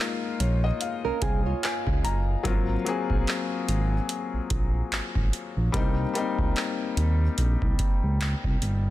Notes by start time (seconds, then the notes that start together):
Already playing: G#3 A#3 D#4 F4
0.00 clap
0.40 A#1 C#5, closed hi-hat
0.64 D#5
0.81 F5, closed hi-hat
1.05 C2 C#4 A#4
1.22 C2 C4 G#4 G#5, kick, closed hi-hat
1.46 F4 C#5
1.63 G#5, clap, closed hi-hat
1.87 C#2, kick
2.04 F#1 A#5, closed hi-hat
2.43 G#1 F#3 A#3 C4, kick, closed hi-hat
2.47 F4
2.85 F#3 A#3 C4 G#4, closed hi-hat
3.10 A#1, kick
3.27 clap, closed hi-hat
3.68 G#1, closed hi-hat
4.09 closed hi-hat
4.33 A#1
4.50 A#1, kick, closed hi-hat
4.92 G#1, clap, closed hi-hat
5.15 G#1, kick
5.33 closed hi-hat
5.57 A#1
5.72 C2 G3 A#3 C4, kick, closed hi-hat
5.76 D#4
6.13 G3 A#3 C4 D#4, closed hi-hat
6.39 C#2, kick
6.56 clap, closed hi-hat
6.97 D#2, closed hi-hat
7.38 A#1, closed hi-hat
7.62 C2, kick
7.79 kick, closed hi-hat
8.03 C#2
8.21 clap, closed hi-hat
8.44 C2, kick
8.62 G1, closed hi-hat